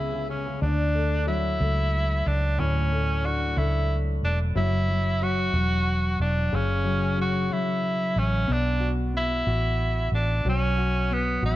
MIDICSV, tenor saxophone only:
0, 0, Header, 1, 2, 480
1, 0, Start_track
1, 0, Tempo, 655738
1, 455, Time_signature, 6, 3, 24, 8
1, 8461, End_track
2, 0, Start_track
2, 0, Title_t, "Tenor saxophone"
2, 0, Program_c, 0, 66
2, 0, Note_on_c, 0, 64, 75
2, 189, Note_off_c, 0, 64, 0
2, 218, Note_on_c, 0, 61, 66
2, 440, Note_off_c, 0, 61, 0
2, 456, Note_on_c, 0, 62, 88
2, 907, Note_off_c, 0, 62, 0
2, 937, Note_on_c, 0, 64, 96
2, 1663, Note_on_c, 0, 62, 89
2, 1674, Note_off_c, 0, 64, 0
2, 1899, Note_on_c, 0, 61, 90
2, 1910, Note_off_c, 0, 62, 0
2, 2384, Note_on_c, 0, 66, 88
2, 2395, Note_off_c, 0, 61, 0
2, 2617, Note_on_c, 0, 64, 91
2, 2628, Note_off_c, 0, 66, 0
2, 2900, Note_off_c, 0, 64, 0
2, 3108, Note_on_c, 0, 62, 81
2, 3214, Note_off_c, 0, 62, 0
2, 3345, Note_on_c, 0, 64, 99
2, 3827, Note_on_c, 0, 66, 104
2, 3838, Note_off_c, 0, 64, 0
2, 4542, Note_off_c, 0, 66, 0
2, 4549, Note_on_c, 0, 62, 92
2, 4798, Note_on_c, 0, 61, 96
2, 4809, Note_off_c, 0, 62, 0
2, 5267, Note_off_c, 0, 61, 0
2, 5280, Note_on_c, 0, 66, 93
2, 5509, Note_on_c, 0, 64, 95
2, 5520, Note_off_c, 0, 66, 0
2, 5994, Note_on_c, 0, 61, 85
2, 6005, Note_off_c, 0, 64, 0
2, 6242, Note_on_c, 0, 62, 97
2, 6253, Note_off_c, 0, 61, 0
2, 6510, Note_off_c, 0, 62, 0
2, 6712, Note_on_c, 0, 64, 99
2, 7392, Note_off_c, 0, 64, 0
2, 7428, Note_on_c, 0, 62, 85
2, 7644, Note_off_c, 0, 62, 0
2, 7680, Note_on_c, 0, 61, 96
2, 8149, Note_on_c, 0, 59, 91
2, 8160, Note_off_c, 0, 61, 0
2, 8379, Note_off_c, 0, 59, 0
2, 8387, Note_on_c, 0, 64, 99
2, 8461, Note_off_c, 0, 64, 0
2, 8461, End_track
0, 0, End_of_file